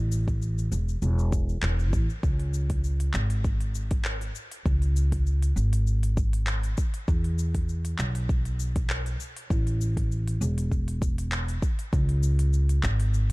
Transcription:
Already playing: upright bass A1
0.12 cabasa
0.28 kick, cabasa
0.42 cabasa
0.58 cabasa
0.72 upright bass E1, cabasa
0.89 cabasa
1.02 upright bass E1, cabasa
1.19 cabasa
1.32 kick, cabasa
1.49 cabasa
1.62 upright bass E1, clap, cabasa
1.79 cabasa
1.93 upright bass A1, kick, cabasa
2.10 cabasa
2.23 upright bass C#2, kick, cabasa
2.39 open hi-hat
2.54 cabasa
2.70 kick, open hi-hat, cabasa
2.84 cabasa
3.00 open hi-hat, cabasa
3.14 upright bass G#1, clap, cabasa
3.30 open hi-hat, cabasa
3.44 kick, cabasa
3.61 open hi-hat, cabasa
3.75 cabasa
3.91 kick, open hi-hat, cabasa
4.05 clap, cabasa
4.21 open hi-hat, cabasa
4.35 cabasa
4.52 open hi-hat, cabasa
4.66 upright bass C#2, kick, cabasa
4.82 open hi-hat, cabasa
4.96 cabasa
5.12 kick, open hi-hat, cabasa
5.27 cabasa
5.42 open hi-hat, cabasa
5.56 upright bass G#1, cabasa
5.73 open hi-hat, cabasa
5.87 cabasa
6.03 open hi-hat, cabasa
6.17 kick, cabasa
6.33 open hi-hat, cabasa
6.47 clap, cabasa
6.63 open hi-hat, cabasa
6.78 kick, cabasa
6.94 open hi-hat, cabasa
7.08 upright bass E2, kick, cabasa
7.24 open hi-hat
7.39 cabasa
7.55 kick, open hi-hat, cabasa
7.69 cabasa
7.85 open hi-hat, cabasa
7.99 upright bass B1, clap, cabasa
8.15 open hi-hat, cabasa
8.29 kick, cabasa
8.45 open hi-hat, cabasa
8.60 cabasa
8.76 kick, open hi-hat, cabasa
8.90 clap, cabasa
9.06 open hi-hat, cabasa
9.20 cabasa
9.36 open hi-hat, cabasa
9.50 upright bass A1, kick, cabasa
9.67 open hi-hat, cabasa
9.81 cabasa
9.97 kick, open hi-hat, cabasa
10.12 cabasa
10.28 open hi-hat, cabasa
10.41 upright bass E1, cabasa
10.58 open hi-hat, cabasa
10.71 kick, cabasa
10.88 open hi-hat, cabasa
11.02 kick, cabasa
11.18 open hi-hat, cabasa
11.32 clap, cabasa
11.48 open hi-hat, cabasa
11.62 kick, cabasa
11.79 open hi-hat, cabasa
11.93 upright bass C#2, kick, cabasa
12.09 open hi-hat
12.23 cabasa
12.39 open hi-hat, cabasa
12.53 cabasa
12.69 open hi-hat, cabasa
12.83 upright bass G#1, kick, clap, cabasa
13.00 open hi-hat, cabasa
13.14 cabasa

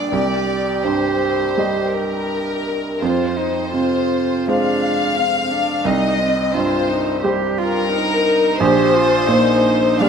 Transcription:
Already playing: felt piano G3 G4 D5, cello D4, violin section D5
0.12 felt piano C2, cello G4, violin section D5
0.84 felt piano G2, violin section C5
1.58 felt piano G3 G4 D#5
1.92 violin section A#4
3.00 felt piano F2, cello F4, violin section C5
3.37 cello D#4
3.73 felt piano C3, cello F4
4.47 felt piano G#3 F4 C5, cello D4, violin section F5
5.17 cello C4
5.50 cello D4
5.85 felt piano C2, cello D#4, violin section D#5
6.19 cello C4
6.53 felt piano G2, cello F4, violin section C5
6.88 cello D#4
7.23 felt piano G3 G4 C5, cello G4
7.58 cello F4, violin section A#4
7.92 cello D#4
8.60 felt piano A#1, cello G4, violin section C5
8.94 cello F4
9.27 felt piano A#2, cello D#4
9.99 felt piano G3 G4 D5, cello D4, violin section F5

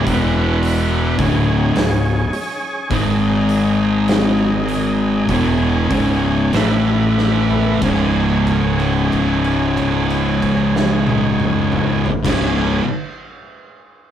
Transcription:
0.06 fingered electric bass E1, distorted electric guitar E2 B2 E3, tonewheel organ E4 B4 F#5, kick, open hi-hat
0.63 open hi-hat
1.19 fingered electric bass D1, distorted electric guitar D2 A2 D3, tonewheel organ C#4 G#4 C#5, kick, open hi-hat
1.76 fingered electric bass C#1, distorted electric guitar C#2 G#2, snare, open hi-hat
2.33 open hi-hat
2.90 fingered electric bass G#1, distorted electric guitar G#2 D#3 G#3, tonewheel organ G#3 D#4, kick, open hi-hat
3.49 open hi-hat
4.08 snare, open hi-hat
4.68 open hi-hat
5.29 fingered electric bass E1, distorted electric guitar E2 B2 E3, tonewheel organ C#4 C#5, kick, open hi-hat
5.91 fingered electric bass C#1, distorted electric guitar C#2 G#2 C#3, kick, open hi-hat
6.53 fingered electric bass A1, distorted electric guitar A2 E3 A3, tonewheel organ A3 E4 B4, snare, open hi-hat
7.18 snare
7.50 floor tom
7.80 fingered electric bass C#1, distorted electric guitar C#2 G#2 C#3, kick, crash
7.85 tonewheel organ C#4 G#4 C#5
8.47 kick, crash
8.80 crash
9.12 kick, crash
9.44 crash
9.77 kick, crash
10.10 crash
10.42 kick, crash
10.76 snare
11.07 high tom
11.40 mid tom
11.72 mid tom
12.06 floor tom
12.23 fingered electric bass C#1, distorted electric guitar C#2 G#2 C#3, kick, snare, crash
12.28 tonewheel organ C#4 G#4 C#5

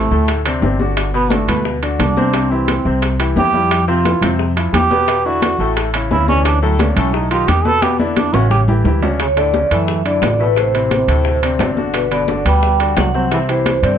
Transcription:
Already playing: trombone A3
0.11 upright bass D2, upright piano A2 A3 A4, high bongo, high conga
0.28 high bongo, high conga, high timbale
0.45 upright piano C3 C4 D4, high bongo, high conga, high timbale
0.62 upright bass G1, upright piano C3 C4 D4, high bongo, low bongo, high conga
0.79 upright piano D3 D4 F#4, high bongo, high conga
0.97 high bongo, high conga, high timbale
1.14 upright piano B2 B3 B4, trombone B3, high conga
1.30 upright piano D3 D4 F#4, trombone A3, high bongo, high conga, high timbale
1.48 upright bass D2, upright piano B2 B3 B4, high bongo, high conga, low conga, high timbale
1.65 high bongo, high conga
1.82 upright piano D3 D4 F#4, high bongo, high conga, high timbale
1.99 upright bass C2, trombone D4, high bongo, low bongo, high conga, high timbale
2.17 upright piano C3 C4 C5, high bongo, high conga
2.33 upright piano C3 C4 C5, high bongo, high conga, high timbale
2.51 upright piano E3 E4 G4, trombone C4, high conga
2.68 high bongo, high conga, high timbale
2.85 upright bass C2, upright piano C3 C4 C5, high bongo, high conga
3.02 high bongo, high conga, high timbale
3.19 upright piano E3 E4 G4, high bongo, high conga, high timbale
3.36 upright bass F2, upright piano E3 E4 G4, trombone G4, high bongo, low bongo, high conga
3.54 upright piano G3 E4 F4, high bongo, high conga
3.71 high bongo, high conga, high timbale
3.88 upright piano C3 C4 C5, trombone F4, high conga
4.05 upright piano E3 E4 F4, high bongo, high conga, high timbale
4.21 upright bass F2, upright piano C3 C4 C5, high bongo, high conga, low conga, high timbale
4.39 high bongo, high conga
4.56 upright piano F3 E4 F4, high bongo, high conga, high timbale
4.73 upright bass E2, trombone G4, high bongo, low bongo, high conga, high timbale
4.91 upright piano B2 B3 B4, high bongo, high conga
5.08 upright piano B2 B3 B4, high bongo, high conga, high timbale
5.25 upright piano D3 D4 E4, trombone F#4, high conga
5.42 high bongo, high conga, high timbale
5.59 upright bass A1, upright piano A2 A3 A4, high bongo, high conga
5.77 high bongo, high conga, high timbale
5.94 upright piano C#3 C#4 E4, high bongo, high conga, high timbale
6.11 upright bass D2, upright piano C#3 C#4 E4, trombone E4, high bongo, low bongo, high conga
6.28 upright piano E3 C#4 D4, trombone C#4, high bongo, high conga
6.45 trombone D4, high bongo, high conga, high timbale
6.62 upright piano A2 A3 A4, trombone F#3, high conga
6.79 upright piano C#3 C#4 D4, trombone A3, high bongo, high conga, high timbale
6.96 upright bass B1, upright piano A2 A3 A4, trombone C#4, high bongo, high conga, low conga, high timbale
7.14 trombone D#4, high bongo
7.31 upright piano D#3 D#4 G4, trombone F4, high bongo, high conga, high timbale
7.48 upright bass E2, trombone G4, high bongo, low bongo, high conga, high timbale
7.65 upright piano B2 B3 B4, trombone A4, high bongo, high conga
7.82 upright piano B2 B3 B4, trombone G4, high bongo, high conga, high timbale
7.99 upright piano D3 D4 E4, trombone B3, high conga
8.17 trombone D4, high bongo, high conga, high timbale
8.33 upright bass A1, upright piano C#3 C#4 C#5, trombone F#4, high bongo, low conga, high timbale
8.50 trombone G4, high bongo, low conga
8.68 upright piano E3 E4 G4, high bongo, low conga
8.84 upright bass D2, upright piano E3 E4 G4, high bongo, low bongo, low conga
9.02 upright piano C#3 C#4 D4, high bongo, low conga, low timbale
9.19 trombone C#3, vibraphone C#5, high bongo, high conga, high timbale
9.36 upright piano A2 A3 A4, trombone D3, vibraphone D5, high bongo, high conga, high timbale
9.54 upright piano C#3 C#4 D4, high bongo, high conga, low timbale
9.71 upright bass F#2, upright piano A2 A3 A4, trombone E3, vibraphone E5, high timbale
9.88 high bongo, high conga
10.05 upright piano D3 D4 E4, trombone D3, vibraphone D5, high bongo, high conga, high timbale
10.22 upright bass A1, high bongo, low bongo, high conga, high timbale, low timbale
10.39 upright piano A2 A3 A4, trombone B2, vibraphone B4, high bongo, high conga
10.56 upright piano A2 A3 A4, trombone C3, vibraphone C5, high bongo, high conga, high timbale
10.74 upright piano C3 C4 E4, high bongo, high conga, high timbale
10.91 high bongo, high conga, high timbale, low timbale
11.08 upright bass D2, upright piano A2 A3 A4, high conga, high timbale
11.25 high bongo, high conga
11.43 upright piano C3 C4 D4, high conga, high timbale
11.59 upright bass G1, upright piano C3 C4 D4, high bongo, low bongo, high conga, high timbale, low timbale
11.77 upright piano D3 D4 F#4, high bongo, high conga
11.94 trombone B2, vibraphone B4, high bongo, high conga, high timbale
12.11 upright piano B2 B3 B4, trombone D3, vibraphone D5, high bongo, high conga, high timbale
12.28 upright piano D3 D4 F#4, high bongo, high conga, low timbale
12.45 upright bass D2, upright piano B2 B3 B4, trombone G3, vibraphone G5, high timbale
12.63 high bongo, high conga
12.80 upright piano D3 D4 F#4, high bongo, high conga, high timbale
12.97 upright bass C2, trombone F#3, vibraphone F#5, high bongo, low bongo, high conga, high timbale, low timbale
13.14 upright piano C3 C4 C5, trombone F#3, vibraphone F#5, high bongo, high conga
13.31 upright piano C3 C4 C5, trombone E3, vibraphone E5, high bongo, high conga, high timbale
13.48 trombone C3, upright piano E3 E4 G4, vibraphone C5, high bongo, high conga, high timbale
13.66 high bongo, high conga, high timbale, low timbale
13.82 upright bass G2, upright piano C3 C4 C5, trombone D3, vibraphone D5, high conga, high timbale

